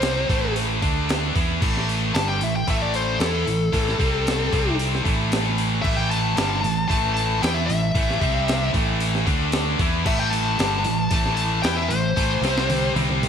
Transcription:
Already playing: fingered electric bass C2, distorted electric guitar C3 G3 C4, lead electric guitar C5
0.02 snare, open hi-hat
0.29 fingered electric bass A1, distorted electric guitar A2 E3 A3, kick, open hi-hat
0.56 open hi-hat
0.82 fingered electric bass D2, distorted electric guitar D3 A3 D4, kick, open hi-hat
1.09 snare, open hi-hat
1.35 fingered electric bass E2, distorted electric guitar E3 B3 E4, kick, open hi-hat
1.61 fingered electric bass A1, distorted electric guitar A2 E3 A3, kick, crash
1.77 snare
1.89 open hi-hat
2.15 fingered electric bass G1, distorted electric guitar G2 D3 G3, lead electric guitar A5, snare, open hi-hat
2.28 lead electric guitar G5
2.41 fingered electric bass A1, distorted electric guitar A2 E3, lead electric guitar E5, open hi-hat
2.56 lead electric guitar G5
2.67 fingered electric bass A1, distorted electric guitar A2 E3 A3, lead electric guitar E5, kick, open hi-hat
2.82 lead electric guitar D5
2.94 lead electric guitar C5, open hi-hat
3.19 fingered electric bass E2, distorted electric guitar E3 B3 E4, lead electric guitar A4, snare, open hi-hat
3.46 fingered electric bass A1, distorted electric guitar A2 E3, open hi-hat
3.72 fingered electric bass A1, distorted electric guitar A2 E3 A3, kick, open hi-hat
3.89 snare
3.99 fingered electric bass C2, distorted electric guitar C3 G3 C4, kick, open hi-hat
4.27 snare, open hi-hat
4.52 fingered electric bass C2, distorted electric guitar C3 G3 C4, kick, open hi-hat
4.79 open hi-hat
4.95 snare
5.04 fingered electric bass A1, distorted electric guitar A2 E3 A3, kick, open hi-hat
5.32 snare, open hi-hat
5.58 open hi-hat
5.82 fingered electric bass A1, distorted electric guitar A2 E3 A3, lead electric guitar E5, kick, crash
5.97 lead electric guitar G5
6.11 lead electric guitar A5, open hi-hat
6.36 fingered electric bass G1, distorted electric guitar G2 D3 G3, snare, open hi-hat
6.61 fingered electric bass A1, distorted electric guitar A2 E3, open hi-hat
6.88 fingered electric bass A1, distorted electric guitar A2 E3 A3, lead electric guitar A5, kick, open hi-hat
7.14 lead electric guitar A5, open hi-hat
7.41 fingered electric bass E2, distorted electric guitar E3 B3 E4, lead electric guitar G5, snare, open hi-hat
7.54 lead electric guitar E5
7.67 fingered electric bass A1, distorted electric guitar A2 E3, lead electric guitar E5, open hi-hat
7.94 fingered electric bass A1, distorted electric guitar A2 E3 A3, kick, open hi-hat
8.10 snare
8.21 fingered electric bass C2, distorted electric guitar C3 G3 C4, kick, open hi-hat
8.48 snare, open hi-hat
8.73 fingered electric bass A1, distorted electric guitar A2 E3 A3, kick, open hi-hat
9.00 open hi-hat
9.15 snare
9.26 fingered electric bass D2, distorted electric guitar D3 A3 D4, kick, open hi-hat
9.52 snare, open hi-hat
9.79 fingered electric bass E2, distorted electric guitar E3 B3 E4, kick, open hi-hat
10.05 fingered electric bass A1, distorted electric guitar A2 E3 A3, lead electric guitar E5, kick, crash
10.19 lead electric guitar G5
10.30 lead electric guitar A5, open hi-hat
10.57 fingered electric bass G1, distorted electric guitar G2 D3 G3, snare, open hi-hat
10.84 fingered electric bass A1, distorted electric guitar A2 E3, open hi-hat
11.09 fingered electric bass A1, distorted electric guitar A2 E3 A3, lead electric guitar A5, kick, open hi-hat
11.26 snare
11.35 lead electric guitar A5, open hi-hat
11.63 fingered electric bass E2, distorted electric guitar E3 B3 E4, lead electric guitar G5, snare, open hi-hat
11.77 lead electric guitar E5
11.88 fingered electric bass A1, distorted electric guitar A2 E3, lead electric guitar C5, open hi-hat
12.16 fingered electric bass A1, distorted electric guitar A2 E3 A3, kick, open hi-hat
12.41 fingered electric bass C2, distorted electric guitar C3 G3 C4, snare, open hi-hat
12.58 snare
12.70 open hi-hat, mid tom
12.94 fingered electric bass C2, distorted electric guitar C3 G3 C4, open hi-hat, mid tom
13.09 mid tom
13.23 mid tom, open hi-hat

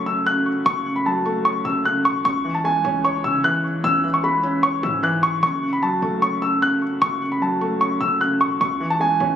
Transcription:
Already playing: 808-style bass F#1, felt piano F#2 C#3 F#3 A3 C#4
0.06 felt piano F#2, grand piano E6
0.26 felt piano C#3, grand piano F#6
0.66 808-style bass F#1, felt piano F#2, grand piano C#6
0.86 felt piano C#3
0.96 grand piano B5
1.06 felt piano F#3, grand piano A5
1.25 felt piano A3
1.45 felt piano C#4, grand piano C#6
1.65 808-style bass F#1, felt piano F#2, grand piano E6
1.85 felt piano C#3, grand piano F#6
2.05 808-style bass E1, grand piano C#6
2.25 808-style bass C#2, felt piano C#3, grand piano C#6
2.45 felt piano E3
2.55 grand piano A5
2.64 felt piano G#3, grand piano G#5
2.85 808-style bass C#2, felt piano C#4
3.04 felt piano C#5, grand piano C#6
3.24 felt piano C#3, 808-style bass C#3, grand piano E6
3.44 felt piano E3, grand piano F#6
3.84 808-style bass C#2, felt piano C#3, grand piano E6
4.04 felt piano E3
4.14 grand piano C#6
4.24 felt piano G#3, grand piano B5
4.43 felt piano C#4
4.63 felt piano C#5, grand piano C#6
4.83 808-style bass G#2, felt piano C#3, grand piano E6
5.03 felt piano E3, grand piano F#6
5.23 grand piano C#6
5.43 808-style bass F#1, felt piano F#2, grand piano C#6
5.63 felt piano C#3
5.73 grand piano B5
5.83 felt piano F#3, grand piano A5
6.02 808-style bass F#1, felt piano A3
6.22 felt piano C#4, grand piano C#6
6.42 felt piano F#2, grand piano E6
6.62 felt piano C#3, grand piano F#6
7.02 808-style bass F#1, felt piano F#2, grand piano C#6
7.22 felt piano C#3
7.32 grand piano B5
7.41 felt piano F#3, grand piano A5
7.61 felt piano A3
7.81 felt piano C#4, grand piano C#6
8.01 808-style bass F#1, felt piano F#2, grand piano E6
8.21 felt piano C#3, grand piano F#6
8.41 808-style bass E1, grand piano C#6
8.61 808-style bass C#2, felt piano C#3, grand piano C#6
8.80 felt piano E3
8.90 grand piano A5
9.00 felt piano G#3, grand piano G#5
9.20 808-style bass C#2, felt piano C#4

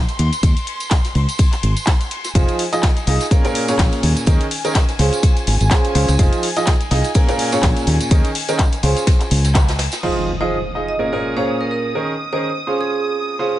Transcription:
Already playing: violin section C6
0.08 closed hi-hat, ride, tambourine
0.19 fingered electric bass D#2, closed hi-hat, ride
0.33 closed hi-hat, tambourine
0.43 fingered electric bass D#2, kick, closed hi-hat, ride, tambourine
0.56 closed hi-hat, ride, tambourine
0.67 closed hi-hat, ride
0.80 closed hi-hat, tambourine
0.91 kick, snare, clap, closed hi-hat, ride, tambourine
1.05 snare, closed hi-hat, tambourine
1.15 fingered electric bass C#2, closed hi-hat, ride
1.29 closed hi-hat, tambourine
1.38 kick, closed hi-hat, ride, tambourine
1.52 clap, closed hi-hat, tambourine
1.63 fingered electric bass G#1, closed hi-hat, ride
1.76 closed hi-hat, tambourine
1.87 kick, snare, clap, closed hi-hat, ride, tambourine
2.01 closed hi-hat, tambourine
2.11 closed hi-hat, ride
2.24 snare, closed hi-hat, tambourine
2.35 fingered electric bass F1, upright piano F3 D#4 F4 G#4 C5, violin section G#5, kick, closed hi-hat, ride, tambourine
2.48 closed hi-hat, tambourine
2.59 open hi-hat, ride
2.73 upright piano F3 D#4 F4 G#4 D#5, closed hi-hat, tambourine
2.83 kick, snare, clap, closed hi-hat, ride, tambourine
2.96 closed hi-hat, ride, tambourine
3.07 fingered electric bass C2, upright piano D#4 F4 G#4 D#5, open hi-hat, ride
3.21 snare, closed hi-hat, tambourine
3.31 upright piano A#2 C#4 F4 G#4 A#4, kick, closed hi-hat, ride, tambourine
3.44 upright piano A#2 C#4 F4 G#4 A#4, clap, closed hi-hat, tambourine
3.55 open hi-hat
3.68 upright piano A#2 C#4 F4 G#4 C#5, closed hi-hat, tambourine
3.79 fingered electric bass A#1, kick, snare, clap, closed hi-hat, ride, tambourine
3.92 closed hi-hat, ride, tambourine
4.03 fingered electric bass D#2, open hi-hat, ride
4.17 closed hi-hat, tambourine
4.26 fingered electric bass D#2, upright piano D#3 C#4 D#4 G#4 A#4, kick, closed hi-hat, ride, tambourine
4.40 closed hi-hat, ride, tambourine
4.51 open hi-hat, ride
4.65 upright piano D#3 C#4 D#4 G#4 A#4, closed hi-hat, tambourine
4.75 kick, snare, clap, closed hi-hat, ride, tambourine
4.89 snare, closed hi-hat, tambourine
4.99 fingered electric bass C#2, upright piano C#3 C#4 F4 G#4 C5, open hi-hat, ride
5.13 closed hi-hat, tambourine
5.23 kick, closed hi-hat, ride, tambourine
5.37 closed hi-hat, tambourine
5.47 fingered electric bass G#1, open hi-hat, ride
5.61 fingered electric bass G#1, closed hi-hat, tambourine
5.71 upright piano C#3 C#4 F4 G#4 C5, kick, snare, clap, closed hi-hat, ride, tambourine
5.85 closed hi-hat, tambourine
5.95 fingered electric bass C#2, upright piano C#4 F4 G#4 C5, open hi-hat, ride
6.08 fingered electric bass C#2, snare, closed hi-hat, tambourine
6.19 fingered electric bass F1, upright piano F3 D#4 F4 G#4 C5, kick, closed hi-hat, ride, tambourine
6.33 closed hi-hat, tambourine
6.43 open hi-hat, ride
6.57 upright piano F3 D#4 F4 G#4 D#5, closed hi-hat, tambourine
6.67 kick, snare, clap, closed hi-hat, ride, tambourine
6.80 closed hi-hat, ride, tambourine
6.91 fingered electric bass C2, upright piano D#4 F4 G#4 D#5, snare, open hi-hat, ride
7.04 closed hi-hat, ride, tambourine
7.14 upright piano A#2 C#4 F4 G#4 A#4, kick, closed hi-hat, ride, tambourine
7.28 upright piano A#2 C#4 F4 G#4 A#4, clap, closed hi-hat, tambourine
7.39 open hi-hat
7.52 upright piano A#2 C#4 F4 G#4 C#5, closed hi-hat, tambourine
7.63 fingered electric bass A#1, kick, snare, clap, closed hi-hat, ride
7.77 closed hi-hat, ride, tambourine
7.87 fingered electric bass D#2, open hi-hat, ride
8.00 closed hi-hat, tambourine
8.11 fingered electric bass D#2, upright piano D#3 C#4 D#4 G#4 A#4, kick, closed hi-hat, ride, tambourine
8.24 closed hi-hat, ride, tambourine
8.35 open hi-hat, ride
8.49 upright piano D#3 C#4 D#4 G#4 A#4, closed hi-hat, tambourine
8.59 kick, clap, closed hi-hat, ride, tambourine
8.72 closed hi-hat, tambourine
8.83 fingered electric bass C#2, upright piano C#3 C#4 F4 G#4 C5, open hi-hat, ride
8.96 closed hi-hat, ride, tambourine
9.07 kick, snare, closed hi-hat, ride, tambourine
9.20 clap, closed hi-hat, ride, tambourine
9.31 fingered electric bass C#2, open hi-hat, ride
9.45 snare, closed hi-hat, tambourine
9.55 kick, snare, clap, closed hi-hat, ride, tambourine
9.68 snare, closed hi-hat, ride, tambourine
9.79 snare, open hi-hat, ride
9.92 snare, closed hi-hat, ride, tambourine
10.03 upright piano F3 D#4 F4 G#4 C5, violin section D#6, crash, impact
10.41 upright piano F3 D#4 F4 G#4 D#5, vibraphone C5
10.75 upright piano D#4 F4 G#4 D#5
10.89 vibraphone D#5
10.99 upright piano A#2 C#4 F4 G#4 A#4
11.13 upright piano A#2 C#4 F4 G#4 A#4
11.37 upright piano A#2 C#4 F4 G#4 C#5, vibraphone C5
11.61 vibraphone A#4
11.71 vibraphone A#4
11.95 upright piano D#3 C#4 D#4 G#4 A#4
12.33 upright piano D#3 C#4 D#4 G#4 A#4, vibraphone C5
12.67 upright piano C#3 C#4 F4 G#4 C5
12.81 vibraphone G#4
13.39 upright piano C#3 C#4 F4 G#4 C5

